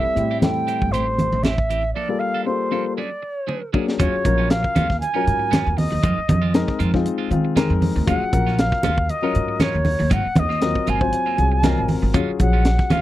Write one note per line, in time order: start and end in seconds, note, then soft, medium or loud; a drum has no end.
0.00 0.13 G3 medium
0.00 0.13 C4 medium
0.00 0.14 E4 medium
0.00 0.14 A4 medium
0.00 0.38 E5 medium
0.05 muted clean electric guitar stroke soft
0.05 muted upright bass stroke soft
0.15 0.77 A2 medium
0.15 0.40 G3 medium
0.15 0.40 C4 medium
0.15 0.40 E4 medium
0.15 0.41 G4 medium
0.15 muted clean electric guitar stroke soft
0.15 closed hi-hat medium
0.31 0.41 C4 soft
0.31 0.41 E4 soft
0.31 0.41 G4 soft
0.41 1.39 G3 medium
0.41 1.39 C4 medium
0.41 1.39 E4 medium
0.41 1.39 A4 medium
0.41 0.93 G5 medium
0.41 snare loud
0.41 closed hi-hat medium
0.41 muted conga soft
0.41 high conga medium
0.67 0.81 E3 medium
0.67 0.81 C4 medium
0.67 0.81 E4 medium
0.67 0.81 G4 medium
0.67 closed hi-hat soft
0.82 0.93 G1 medium
0.82 muted clean electric guitar stroke soft
0.82 kick medium
0.92 1.29 A1 medium
0.92 1.07 E3 medium
0.92 1.07 C4 medium
0.92 1.07 E4 medium
0.92 1.07 G4 medium
0.92 1.45 C5 medium
0.92 closed hi-hat medium
0.92 muted conga soft
1.08 muted clean electric guitar stroke soft
1.19 muted clean electric guitar stroke soft
1.19 closed hi-hat medium
1.19 muted conga soft
1.19 high conga medium
1.32 1.91 A1 medium
1.43 1.58 E3 medium
1.43 1.57 C4 medium
1.43 1.57 E4 medium
1.43 1.57 G4 medium
1.43 1.93 E5 medium
1.43 snare medium
1.43 closed hi-hat medium
1.43 high conga medium
1.58 muted clean electric guitar stroke soft
1.58 kick medium
1.70 1.83 E3 medium
1.70 1.83 C4 medium
1.70 1.83 E4 medium
1.70 1.83 G4 medium
1.70 closed hi-hat medium
1.94 2.09 F3 medium
1.94 2.09 A#3 medium
1.94 2.09 D4 medium
1.94 2.09 A4 medium
1.94 2.21 D5 medium
2.09 2.44 G3 medium
2.09 2.44 A#3 medium
2.09 2.45 F4 medium
2.09 2.45 A4 medium
2.19 2.45 F5 medium
2.19 muted clean electric guitar stroke soft
2.34 2.45 A#3 soft
2.34 2.45 D4 soft
2.34 2.45 A4 soft
2.45 2.70 G3 medium
2.45 2.70 A#3 medium
2.45 2.70 F4 medium
2.45 2.71 A4 medium
2.45 2.93 C5 medium
2.45 muted clean electric guitar stroke soft
2.71 2.85 F3 medium
2.71 2.97 G3 medium
2.71 2.85 A#3 medium
2.71 2.97 A#3 medium
2.71 2.85 D4 medium
2.71 2.97 F4 medium
2.71 2.98 A4 medium
2.71 2.85 A4 medium
2.86 muted clean electric guitar stroke soft
2.97 3.11 F#3 medium
2.97 3.10 C#4 medium
2.97 3.10 D4 medium
2.97 3.10 G#4 medium
2.97 3.70 D5 medium
3.11 muted clean electric guitar stroke soft
3.22 muted clean electric guitar stroke soft
3.47 3.61 F#3 medium
3.47 3.61 C#4 medium
3.47 3.61 D4 medium
3.47 3.60 G#4 medium
3.47 high tom soft
3.62 muted clean electric guitar stroke soft
3.73 3.87 F#3 medium
3.73 3.98 F#3 medium
3.73 3.98 A#3 medium
3.73 3.87 C#4 medium
3.73 3.86 D4 medium
3.73 3.98 D4 medium
3.73 3.86 G#4 medium
3.73 3.98 G#4 medium
3.73 kick medium
3.87 muted clean electric guitar stroke soft
3.87 snare medium
3.99 4.12 D#2 medium
3.99 4.15 F#3 medium
3.99 4.23 F#3 medium
3.99 4.15 G#3 medium
3.99 4.15 C#4 medium
3.99 4.24 C#4 medium
3.99 4.16 F4 medium
3.99 4.24 F4 medium
3.99 4.24 G#4 medium
3.99 4.52 C#5 medium
3.99 kick loud
3.99 closed hi-hat medium
3.99 muted conga soft
4.14 muted upright bass stroke soft
4.24 4.61 A#1 medium
4.24 5.10 F#3 medium
4.24 5.10 C#4 medium
4.24 5.10 F4 medium
4.24 5.10 A#4 medium
4.24 muted clean electric guitar stroke soft
4.24 kick medium
4.24 closed hi-hat medium
4.38 4.49 G#3 soft
4.38 4.49 C#4 soft
4.38 4.49 F4 soft
4.50 5.00 F5 medium
4.50 muted clean electric guitar stroke soft
4.50 snare loud
4.50 closed hi-hat medium
4.63 muted clean electric guitar stroke soft
4.63 muted upright bass stroke soft
4.63 kick medium
4.75 5.00 D#2 medium
4.75 4.89 F#3 medium
4.75 4.88 G#3 medium
4.75 4.88 C#4 medium
4.75 4.88 F4 medium
4.75 closed hi-hat medium
4.75 muted conga soft
4.75 high conga medium
4.89 muted clean electric guitar stroke soft
4.89 kick medium
4.89 snare soft
5.00 5.79 G#5 loud
5.00 closed hi-hat medium
5.00 muted conga soft
5.14 6.03 F#3 medium
5.14 5.25 G#3 soft
5.14 5.25 C#4 soft
5.14 6.03 C#4 medium
5.14 5.25 F4 soft
5.14 6.04 F4 medium
5.14 6.04 A#4 medium
5.26 5.63 G#2 medium
5.26 muted clean electric guitar stroke soft
5.26 closed hi-hat medium
5.26 muted conga soft
5.39 muted clean electric guitar stroke soft
5.51 5.68 F#3 medium
5.51 5.68 G#3 medium
5.51 5.68 C#4 medium
5.51 5.68 F4 medium
5.51 snare loud
5.51 closed hi-hat medium
5.51 high conga medium
5.66 5.90 D#2 medium
5.77 6.80 D#5 medium
5.77 muted clean electric guitar stroke soft
5.77 open hi-hat medium
5.77 high conga medium
5.91 6.02 D#2 medium
5.91 muted clean electric guitar stroke soft
6.03 6.16 F2 medium
6.03 6.19 D#3 medium
6.03 6.19 G#3 medium
6.03 6.19 C4 medium
6.03 6.19 F4 medium
6.03 kick medium
6.03 closed hi-hat medium
6.03 muted conga soft
6.17 muted upright bass stroke soft
6.28 6.65 F2 medium
6.28 muted clean electric guitar stroke soft
6.28 kick medium
6.28 closed hi-hat medium
6.28 high conga medium
6.42 6.53 G#3 soft
6.42 6.53 C4 medium
6.42 6.53 F4 medium
6.54 6.91 G#3 medium
6.54 6.91 C4 medium
6.54 6.91 D#4 medium
6.54 6.92 A#4 medium
6.54 muted clean electric guitar stroke soft
6.54 snare loud
6.54 closed hi-hat medium
6.68 muted clean electric guitar stroke soft
6.68 muted upright bass stroke soft
6.68 kick medium
6.68 snare soft
6.79 7.03 F2 medium
6.79 6.93 D#3 medium
6.79 6.92 G#3 medium
6.79 6.92 C4 medium
6.79 6.92 F4 medium
6.79 closed hi-hat medium
6.79 muted conga soft
6.94 7.29 G#3 medium
6.94 7.29 C4 medium
6.94 7.29 D#4 medium
6.94 7.29 F4 medium
6.94 kick medium
6.94 snare soft
7.06 closed hi-hat medium
7.06 muted conga soft
7.18 7.29 G#3 soft
7.18 7.30 C4 medium
7.18 7.30 F4 medium
7.30 7.67 D#3 medium
7.30 7.55 G#3 medium
7.30 7.55 C4 medium
7.30 7.55 D#4 medium
7.30 7.55 F4 medium
7.30 muted clean electric guitar stroke soft
7.30 closed hi-hat medium
7.30 muted conga soft
7.45 muted clean electric guitar stroke soft
7.56 7.72 D#3 medium
7.56 7.72 G#3 medium
7.56 8.04 G#3 medium
7.56 8.05 C4 medium
7.56 7.72 C4 medium
7.56 8.05 D#4 medium
7.56 7.72 F4 medium
7.56 8.05 A#4 loud
7.56 8.04 D#5 medium
7.56 snare loud
7.56 closed hi-hat medium
7.56 high conga medium
7.70 7.93 F2 medium
7.81 muted clean electric guitar stroke soft
7.81 open hi-hat medium
7.81 high conga medium
7.96 8.06 D2 medium
7.96 muted clean electric guitar stroke soft
8.06 8.20 D#2 loud
8.06 8.31 F#3 medium
8.06 8.23 F#3 medium
8.06 8.24 G#3 medium
8.06 8.31 C#4 medium
8.06 8.24 C#4 medium
8.06 8.31 F4 medium
8.06 8.24 F4 medium
8.06 8.31 G#4 medium
8.06 8.61 F#5 medium
8.06 kick loud
8.06 closed hi-hat medium
8.06 muted conga soft
8.22 muted upright bass stroke soft
8.32 8.69 A#1 medium
8.32 9.17 F#3 medium
8.32 9.17 C#4 medium
8.32 9.17 F4 medium
8.32 9.18 A#4 medium
8.32 muted clean electric guitar stroke soft
8.32 kick medium
8.32 closed hi-hat medium
8.46 8.57 G#3 soft
8.46 8.58 C#4 soft
8.46 8.58 F4 medium
8.46 snare soft
8.58 9.12 F5 medium
8.58 muted clean electric guitar stroke soft
8.58 snare loud
8.58 closed hi-hat medium
8.72 muted upright bass stroke soft
8.72 muted clean electric guitar stroke soft
8.72 kick medium
8.72 snare soft
8.83 9.07 D#2 medium
8.83 8.97 F#3 medium
8.83 8.97 G#3 medium
8.83 8.97 C#4 medium
8.83 8.97 F4 medium
8.83 snare soft
8.83 closed hi-hat medium
8.83 muted conga soft
8.83 high conga medium
8.98 muted clean electric guitar stroke soft
8.98 kick medium
9.09 9.64 D#5 medium
9.09 closed hi-hat medium
9.09 muted conga soft
9.22 10.10 F#3 medium
9.22 9.34 G#3 soft
9.22 10.11 C#4 medium
9.22 9.34 C#4 soft
9.22 10.11 F4 medium
9.22 9.34 F4 medium
9.22 10.11 A#4 medium
9.34 9.71 G#2 medium
9.34 muted clean electric guitar stroke soft
9.34 closed hi-hat medium
9.34 muted conga soft
9.48 muted clean electric guitar stroke soft
9.60 9.76 F#3 medium
9.60 9.76 G#3 medium
9.60 9.76 C#4 medium
9.60 9.76 F4 medium
9.60 10.14 C#5 medium
9.60 snare loud
9.60 closed hi-hat medium
9.60 high conga medium
9.74 9.97 D#2 medium
9.85 muted clean electric guitar stroke soft
9.85 open hi-hat medium
9.85 high conga medium
9.99 10.10 D#2 medium
9.99 muted clean electric guitar stroke soft
10.10 10.24 G#1 medium
10.10 10.26 F#3 medium
10.10 10.27 A#3 medium
10.10 10.27 C4 medium
10.10 10.27 F4 medium
10.10 10.41 F#5 loud
10.10 kick medium
10.10 closed hi-hat medium
10.10 muted conga soft
10.26 muted upright bass stroke soft
10.36 10.72 D#2 medium
10.36 10.91 D#5 medium
10.36 muted clean electric guitar stroke soft
10.36 kick medium
10.36 closed hi-hat medium
10.36 high conga medium
10.49 10.60 A#3 soft
10.49 10.61 C4 soft
10.49 10.61 F4 soft
10.49 snare soft
10.61 10.98 F#3 medium
10.61 10.98 C4 medium
10.61 10.99 F4 medium
10.61 10.99 A#4 medium
10.61 snare loud
10.61 closed hi-hat medium
10.75 muted clean electric guitar stroke soft
10.75 muted upright bass stroke soft
10.75 kick medium
10.87 11.11 G#1 medium
10.87 11.01 F#3 medium
10.87 11.01 A#3 medium
10.87 11.00 C4 medium
10.87 11.00 F4 medium
10.87 11.90 G#5 medium
10.87 closed hi-hat medium
10.87 muted conga soft
11.00 11.35 F#3 medium
11.00 11.36 C4 medium
11.00 11.36 F4 medium
11.00 11.36 C5 medium
11.00 kick medium
11.12 closed hi-hat medium
11.12 muted conga soft
11.26 11.37 A#3 soft
11.26 11.37 C4 soft
11.26 11.38 F4 soft
11.37 11.74 C2 medium
11.37 11.62 F#3 medium
11.37 11.62 C4 medium
11.37 11.62 F4 medium
11.37 11.62 G#4 medium
11.37 muted clean electric guitar stroke soft
11.37 closed hi-hat medium
11.37 muted conga soft
11.52 muted clean electric guitar stroke soft
11.63 12.12 F#3 medium
11.63 11.80 F#3 medium
11.63 11.80 A#3 medium
11.63 12.12 C4 medium
11.63 11.80 C4 medium
11.63 12.12 F4 medium
11.63 11.80 F4 medium
11.63 12.12 A#4 medium
11.63 11.87 D#5 medium
11.63 snare loud
11.63 closed hi-hat medium
11.63 high conga medium
11.78 12.01 G#1 medium
11.88 12.12 G#5 medium
11.88 muted clean electric guitar stroke soft
11.88 open hi-hat medium
11.88 high conga medium
12.02 12.13 G#1 medium
12.02 muted clean electric guitar stroke soft
12.14 12.27 D#2 medium
12.14 12.30 F#3 medium
12.14 12.38 F#3 medium
12.14 12.30 G#3 medium
12.14 12.39 C#4 medium
12.14 12.31 C#4 medium
12.14 12.31 F4 medium
12.14 12.39 F4 medium
12.14 12.39 G#4 medium
12.14 kick medium
12.14 closed hi-hat medium
12.14 muted conga soft
12.28 muted upright bass stroke soft
12.39 12.76 A#1 medium
12.39 13.02 F3 medium
12.39 13.02 F#3 medium
12.39 13.02 C#4 medium
12.39 13.02 G#4 medium
12.39 12.93 F#5 medium
12.39 muted clean electric guitar stroke soft
12.39 kick medium
12.39 closed hi-hat medium
12.53 12.64 G#3 soft
12.53 12.64 C#4 soft
12.53 12.64 F4 medium
12.65 muted clean electric guitar stroke soft
12.65 snare loud
12.65 closed hi-hat medium
12.78 muted clean electric guitar stroke soft
12.78 muted upright bass stroke soft
12.78 kick medium
12.78 snare soft
12.90 13.02 D#2 medium
12.90 13.02 F#3 medium
12.90 13.02 G#3 medium
12.90 13.02 C#4 medium
12.90 13.02 F4 medium
12.90 13.02 F5 medium
12.90 snare soft
12.90 closed hi-hat medium
12.90 muted conga soft
12.90 high conga medium